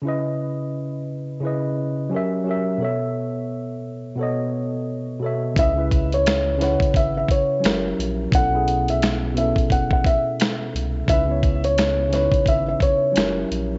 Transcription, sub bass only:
X:1
M:4/4
L:1/16
Q:"Swing 16ths" 1/4=87
K:C#m
V:1 name="Sub bass" clef=bass
z16 | z16 | C,,6- C,, z G,,,2 z2 F,,,2 ^A,,,2 | B,,,6- B,,, z F,,,2 z4 ^B,,,2 |
C,,6- C,, z G,,,2 z2 F,,,2 ^A,,,2 |]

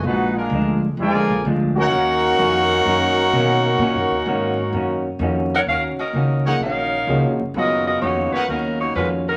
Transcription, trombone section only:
X:1
M:4/4
L:1/8
Q:"Swing" 1/4=128
K:Ebm
V:1 name="Trombone section"
G [A,=DF]2 z [=D,F,A,]2 z [B,_DG]- | [B,DG]8- | [B,DG]6 z2 | z8 |
z8 |]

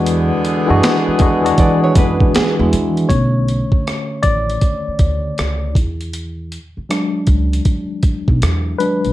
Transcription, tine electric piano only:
X:1
M:4/4
L:1/16
Q:"Swing 16ths" 1/4=79
K:Emix
V:1 name="Tine electric piano"
[E,G,DF]2 z [E,G,DF]3 [E,G,DF] [E,G,DF]6- [E,G,DF] z2 | [D,A,Cc]6 d8 z2 | z4 [F,G,D]2 z8 [F,G,DB]2 |]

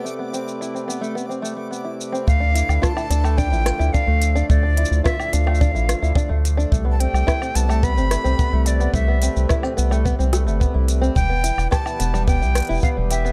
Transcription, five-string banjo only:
X:1
M:4/4
L:1/16
Q:1/4=108
K:Am
V:1 name="Five-string banjo"
A, B, C2 E C B, A, B, C A, A, B, E z C | A, D E2 F E D A, D E F E D A,2 D | A, D E2 F E D A, D E F E D A,2 D | A, B, C2 E C B, A, B, C E C B, A,2 B, |
A, B, C2 E C B, A, B, C A, A, B, E z C | G, B, E2 G E B, G, B, E2 E B, G, G B, |]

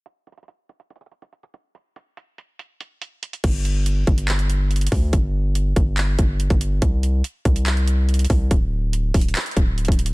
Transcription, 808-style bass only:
X:1
M:4/4
L:1/16
Q:1/4=142
K:Clyd
V:1 name="808-style bass" clef=bass
z16 | z16 | G,,,6 G,,,8 D,,2 | G,,,6 G,,,4 G,,,3 G,,,3 |
C,,4 z2 C,,8 C,,2 | D,,,6 D,,,2 z2 D,,,3 D,,,3 |]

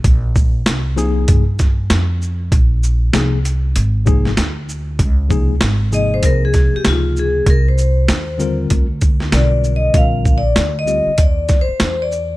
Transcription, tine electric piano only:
X:1
M:4/4
L:1/8
Q:"Swing 16ths" 1/4=97
K:Bbmix
V:1 name="Tine electric piano"
z3 [C,F,B,EA] z4 | z2 [C,F,B,EA] z2 [C,F,B,EA] z2 | z [C,F,B,EA] z [C,F,B,EA]3 [C,F,B,EGA]2 | z3 [D,G,CFB] z2 [D,G,CFB]2 |
[C,D,G,CFB] z2 [D,G,CFG] z4 |]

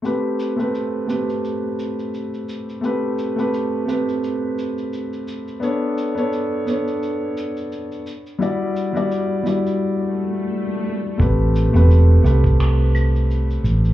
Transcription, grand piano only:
X:1
M:4/4
L:1/16
Q:"Swing 16ths" 1/4=86
K:Ador
V:1 name="Grand piano"
[A,CGB]3 [A,CGB]3 [A,CGB] z8 z | [A,CGB]3 [A,CGB]3 [A,CGB] z8 z | [B,DA^c]3 [B,DAc]3 [B,DAc] z8 z | [G,EFd]3 [G,EFd]3 [G,EFd] z8 z |
[A,CGB]3 [A,CGB]3 [A,CGB] z8 z |]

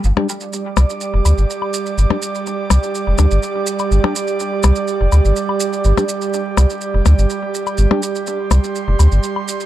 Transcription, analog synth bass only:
X:1
M:4/4
L:1/16
Q:1/4=124
K:Cdor
V:1 name="Analog synth bass" clef=bass
G,,, z4 z C,, z2 F,,, D,, G,,, z4 | G,,, z4 z C,, z2 F,,, D,, G,,, z4 | G,,, z4 z C,, z2 F,,, D,, G,,, z4 | G,,, z4 z C,, z2 F,,, D,, G,,, z4 |
G,,, z4 z C,, z2 F,,, D,, G,,, z4 |]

